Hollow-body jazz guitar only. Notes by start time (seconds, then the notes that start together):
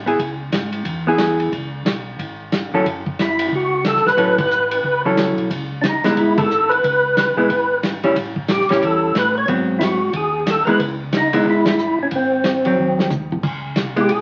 0.06 B3 E4 G#4
1.07 B3 E4 G#4
2.74 F#3 C#4 E4 A4
4.17 F#3 C#4 E4 A4
5.05 F#3 C#4 E4 A4
6.04 G#3 B3 E4
7.37 G#3 B3 E4
8.04 G3 C#4 E4
8.70 G3 C#4 E4
9.48 F#3 B3 C4
10.67 G#3 B3 E4
11.33 G#3 B3 E4
12.66 F#3 C4
13.96 G#3 B3 E4